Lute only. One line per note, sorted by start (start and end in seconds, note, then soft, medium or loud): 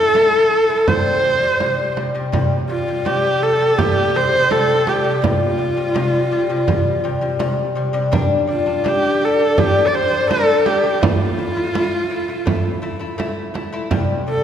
0.00 0.11 A3 medium
0.00 0.12 E4 medium
0.15 0.44 A3 medium
0.15 0.44 E4 loud
0.50 0.65 A3 medium
0.50 0.66 E4 medium
0.69 0.84 A3 medium
0.69 0.84 E4 medium
0.87 1.17 C3 medium
0.87 1.17 G3 medium
1.24 1.39 C3 medium
1.24 1.39 G3 medium
1.43 1.57 C3 medium
1.43 1.57 G3 medium
1.60 1.89 C3 medium
1.60 1.90 G3 medium
1.96 2.11 C3 medium
1.96 2.12 G3 medium
2.15 2.29 C3 medium
2.15 2.30 G3 medium
2.32 2.62 C3 loud
2.32 2.62 G3 loud
2.69 2.84 C3 medium
2.69 2.84 G3 medium
2.88 3.02 C3 medium
2.88 3.03 G3 medium
3.05 3.34 C3 medium
3.05 3.35 G3 loud
3.41 3.56 C3 medium
3.41 3.57 G3 medium
3.59 3.74 C3 medium
3.59 3.75 G3 medium
3.77 4.07 C3 medium
3.77 4.08 G3 medium
4.14 4.29 C3 medium
4.14 4.29 G3 medium
4.32 4.47 C3 medium
4.32 4.47 G3 medium
4.49 4.79 C3 loud
4.49 4.79 G3 loud
4.86 5.01 C3 medium
4.86 5.02 G3 medium
5.04 5.19 C3 medium
5.04 5.19 G3 medium
5.22 5.52 C3 medium
5.22 5.52 G3 loud
5.58 5.73 C3 medium
5.58 5.74 G3 medium
5.77 5.92 C3 medium
5.77 5.92 G3 medium
5.94 6.24 C3 loud
5.94 6.25 G3 loud
6.31 6.46 C3 medium
6.31 6.47 G3 medium
6.49 6.64 C3 medium
6.49 6.65 G3 medium
6.67 6.97 C3 medium
6.67 6.97 G3 loud
7.04 7.19 C3 medium
7.04 7.19 G3 loud
7.21 7.36 C3 medium
7.21 7.37 G3 medium
7.39 7.69 C3 loud
7.39 7.70 G3 loud
7.75 7.91 C3 medium
7.75 7.91 G3 medium
7.93 8.09 C3 loud
7.93 8.09 G3 loud
8.12 8.41 G3 loud
8.12 8.42 D4 loud
8.47 8.63 G3 medium
8.47 8.63 D4 medium
8.66 8.81 G3 medium
8.66 8.82 D4 medium
8.84 9.14 G3 medium
8.84 9.14 D4 loud
9.21 9.36 G3 medium
9.21 9.36 D4 medium
9.39 9.54 G3 medium
9.39 9.54 D4 medium
9.57 9.87 G3 medium
9.57 9.87 D4 medium
9.93 10.08 G3 medium
9.93 10.09 D4 medium
10.10 10.26 G3 medium
10.10 10.27 D4 medium
10.29 10.58 G3 medium
10.29 10.59 D4 loud
10.65 10.80 G3 medium
10.65 10.81 D4 medium
10.84 10.99 G3 medium
10.84 10.99 D4 medium
11.01 11.31 A3 medium
11.01 11.31 E4 loud
11.38 11.53 A3 medium
11.38 11.53 E4 medium
11.56 11.71 A3 medium
11.56 11.71 E4 medium
11.74 12.03 A3 medium
11.74 12.04 E4 loud
12.10 12.25 A3 medium
12.10 12.26 E4 medium
12.28 12.43 A3 medium
12.28 12.44 E4 medium
12.46 12.75 A3 medium
12.46 12.76 E4 loud
12.82 12.97 A3 medium
12.82 12.97 E4 loud
12.99 13.15 A3 medium
12.99 13.15 E4 medium
13.18 13.48 A3 loud
13.18 13.48 E4 loud
13.54 13.69 A3 medium
13.54 13.70 E4 medium
13.73 13.88 A3 loud
13.73 13.88 E4 loud
13.91 14.20 C3 loud
13.91 14.20 G3 loud
14.27 14.42 C3 medium
14.27 14.42 G3 medium